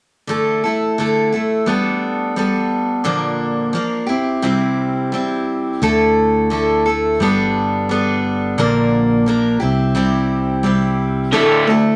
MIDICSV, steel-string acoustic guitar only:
0, 0, Header, 1, 2, 480
1, 0, Start_track
1, 0, Tempo, 690449
1, 198, Time_signature, 4, 2, 24, 8
1, 8314, End_track
2, 0, Start_track
2, 0, Title_t, "Steel-string acoustic guitar"
2, 0, Program_c, 0, 25
2, 190, Note_on_c, 0, 50, 60
2, 202, Note_on_c, 0, 57, 66
2, 205, Note_on_c, 0, 64, 60
2, 210, Note_on_c, 0, 69, 64
2, 434, Note_off_c, 0, 69, 0
2, 435, Note_off_c, 0, 50, 0
2, 441, Note_off_c, 0, 57, 0
2, 442, Note_off_c, 0, 64, 0
2, 442, Note_on_c, 0, 69, 43
2, 454, Note_on_c, 0, 64, 41
2, 464, Note_on_c, 0, 57, 35
2, 682, Note_off_c, 0, 57, 0
2, 682, Note_off_c, 0, 69, 0
2, 682, Note_on_c, 0, 50, 56
2, 685, Note_off_c, 0, 64, 0
2, 691, Note_on_c, 0, 57, 55
2, 693, Note_on_c, 0, 64, 53
2, 696, Note_on_c, 0, 69, 58
2, 912, Note_off_c, 0, 69, 0
2, 920, Note_off_c, 0, 64, 0
2, 921, Note_on_c, 0, 69, 47
2, 922, Note_off_c, 0, 50, 0
2, 926, Note_off_c, 0, 57, 0
2, 929, Note_on_c, 0, 64, 46
2, 943, Note_on_c, 0, 57, 39
2, 1156, Note_on_c, 0, 55, 57
2, 1161, Note_off_c, 0, 57, 0
2, 1161, Note_off_c, 0, 69, 0
2, 1162, Note_off_c, 0, 64, 0
2, 1164, Note_on_c, 0, 59, 66
2, 1165, Note_on_c, 0, 62, 61
2, 1177, Note_on_c, 0, 69, 68
2, 1634, Note_off_c, 0, 55, 0
2, 1639, Note_off_c, 0, 59, 0
2, 1643, Note_on_c, 0, 55, 53
2, 1645, Note_off_c, 0, 62, 0
2, 1647, Note_on_c, 0, 59, 58
2, 1650, Note_off_c, 0, 69, 0
2, 1653, Note_on_c, 0, 62, 51
2, 1660, Note_on_c, 0, 69, 60
2, 2112, Note_on_c, 0, 46, 58
2, 2113, Note_off_c, 0, 62, 0
2, 2117, Note_on_c, 0, 50, 69
2, 2118, Note_off_c, 0, 55, 0
2, 2119, Note_off_c, 0, 59, 0
2, 2120, Note_on_c, 0, 53, 65
2, 2121, Note_on_c, 0, 62, 70
2, 2122, Note_on_c, 0, 58, 69
2, 2123, Note_off_c, 0, 69, 0
2, 2125, Note_on_c, 0, 70, 70
2, 2584, Note_off_c, 0, 53, 0
2, 2592, Note_on_c, 0, 53, 57
2, 2597, Note_off_c, 0, 58, 0
2, 2597, Note_off_c, 0, 62, 0
2, 2599, Note_off_c, 0, 46, 0
2, 2602, Note_off_c, 0, 50, 0
2, 2605, Note_on_c, 0, 58, 58
2, 2605, Note_on_c, 0, 62, 53
2, 2606, Note_off_c, 0, 70, 0
2, 2617, Note_on_c, 0, 70, 54
2, 2824, Note_off_c, 0, 70, 0
2, 2826, Note_on_c, 0, 67, 51
2, 2839, Note_off_c, 0, 53, 0
2, 2840, Note_off_c, 0, 62, 0
2, 2843, Note_on_c, 0, 64, 49
2, 2845, Note_off_c, 0, 58, 0
2, 2851, Note_on_c, 0, 60, 42
2, 3072, Note_off_c, 0, 60, 0
2, 3075, Note_on_c, 0, 48, 65
2, 3076, Note_off_c, 0, 64, 0
2, 3076, Note_off_c, 0, 67, 0
2, 3078, Note_on_c, 0, 55, 62
2, 3080, Note_on_c, 0, 60, 62
2, 3085, Note_on_c, 0, 64, 65
2, 3091, Note_on_c, 0, 67, 68
2, 3551, Note_off_c, 0, 55, 0
2, 3560, Note_on_c, 0, 55, 61
2, 3561, Note_off_c, 0, 48, 0
2, 3563, Note_off_c, 0, 60, 0
2, 3563, Note_off_c, 0, 64, 0
2, 3569, Note_off_c, 0, 67, 0
2, 3571, Note_on_c, 0, 60, 53
2, 3571, Note_on_c, 0, 64, 57
2, 3578, Note_on_c, 0, 67, 59
2, 4041, Note_off_c, 0, 55, 0
2, 4043, Note_off_c, 0, 64, 0
2, 4044, Note_on_c, 0, 50, 66
2, 4047, Note_off_c, 0, 60, 0
2, 4050, Note_on_c, 0, 57, 68
2, 4051, Note_on_c, 0, 64, 77
2, 4052, Note_off_c, 0, 67, 0
2, 4056, Note_on_c, 0, 69, 73
2, 4512, Note_off_c, 0, 50, 0
2, 4519, Note_off_c, 0, 57, 0
2, 4519, Note_off_c, 0, 64, 0
2, 4520, Note_on_c, 0, 50, 54
2, 4527, Note_on_c, 0, 64, 58
2, 4528, Note_on_c, 0, 57, 54
2, 4531, Note_off_c, 0, 69, 0
2, 4540, Note_on_c, 0, 69, 54
2, 4758, Note_off_c, 0, 69, 0
2, 4763, Note_off_c, 0, 50, 0
2, 4766, Note_on_c, 0, 69, 53
2, 4767, Note_off_c, 0, 57, 0
2, 4767, Note_off_c, 0, 64, 0
2, 4780, Note_on_c, 0, 64, 43
2, 4794, Note_on_c, 0, 57, 46
2, 5006, Note_off_c, 0, 69, 0
2, 5006, Note_on_c, 0, 55, 67
2, 5013, Note_off_c, 0, 64, 0
2, 5014, Note_off_c, 0, 57, 0
2, 5017, Note_on_c, 0, 59, 62
2, 5022, Note_on_c, 0, 62, 66
2, 5024, Note_on_c, 0, 69, 66
2, 5478, Note_off_c, 0, 55, 0
2, 5486, Note_on_c, 0, 55, 55
2, 5491, Note_off_c, 0, 59, 0
2, 5492, Note_off_c, 0, 62, 0
2, 5494, Note_off_c, 0, 69, 0
2, 5499, Note_on_c, 0, 59, 59
2, 5500, Note_on_c, 0, 62, 57
2, 5507, Note_on_c, 0, 69, 60
2, 5964, Note_off_c, 0, 55, 0
2, 5964, Note_on_c, 0, 46, 73
2, 5966, Note_on_c, 0, 50, 66
2, 5967, Note_on_c, 0, 53, 68
2, 5968, Note_off_c, 0, 62, 0
2, 5971, Note_off_c, 0, 59, 0
2, 5973, Note_off_c, 0, 69, 0
2, 5975, Note_on_c, 0, 58, 71
2, 5976, Note_on_c, 0, 70, 81
2, 5977, Note_on_c, 0, 62, 76
2, 6431, Note_off_c, 0, 53, 0
2, 6439, Note_on_c, 0, 53, 45
2, 6440, Note_off_c, 0, 58, 0
2, 6443, Note_off_c, 0, 46, 0
2, 6444, Note_off_c, 0, 50, 0
2, 6446, Note_off_c, 0, 62, 0
2, 6449, Note_off_c, 0, 70, 0
2, 6449, Note_on_c, 0, 58, 62
2, 6455, Note_on_c, 0, 62, 62
2, 6460, Note_on_c, 0, 70, 56
2, 6669, Note_off_c, 0, 70, 0
2, 6672, Note_on_c, 0, 67, 51
2, 6680, Note_off_c, 0, 53, 0
2, 6680, Note_off_c, 0, 62, 0
2, 6683, Note_on_c, 0, 64, 43
2, 6685, Note_off_c, 0, 58, 0
2, 6690, Note_on_c, 0, 60, 42
2, 6914, Note_off_c, 0, 60, 0
2, 6915, Note_on_c, 0, 48, 64
2, 6916, Note_off_c, 0, 67, 0
2, 6918, Note_on_c, 0, 55, 59
2, 6920, Note_off_c, 0, 64, 0
2, 6922, Note_on_c, 0, 60, 64
2, 6928, Note_on_c, 0, 64, 69
2, 6933, Note_on_c, 0, 67, 68
2, 7382, Note_off_c, 0, 55, 0
2, 7390, Note_off_c, 0, 60, 0
2, 7390, Note_on_c, 0, 55, 59
2, 7396, Note_off_c, 0, 48, 0
2, 7398, Note_on_c, 0, 60, 60
2, 7400, Note_off_c, 0, 64, 0
2, 7405, Note_off_c, 0, 67, 0
2, 7409, Note_on_c, 0, 64, 62
2, 7412, Note_on_c, 0, 67, 64
2, 7872, Note_off_c, 0, 55, 0
2, 7874, Note_on_c, 0, 50, 75
2, 7875, Note_off_c, 0, 64, 0
2, 7877, Note_off_c, 0, 60, 0
2, 7879, Note_on_c, 0, 57, 80
2, 7880, Note_off_c, 0, 67, 0
2, 7883, Note_on_c, 0, 69, 71
2, 7884, Note_on_c, 0, 64, 73
2, 8107, Note_off_c, 0, 69, 0
2, 8115, Note_off_c, 0, 50, 0
2, 8115, Note_on_c, 0, 69, 55
2, 8117, Note_off_c, 0, 57, 0
2, 8119, Note_off_c, 0, 64, 0
2, 8131, Note_on_c, 0, 64, 46
2, 8136, Note_on_c, 0, 57, 48
2, 8314, Note_off_c, 0, 57, 0
2, 8314, Note_off_c, 0, 64, 0
2, 8314, Note_off_c, 0, 69, 0
2, 8314, End_track
0, 0, End_of_file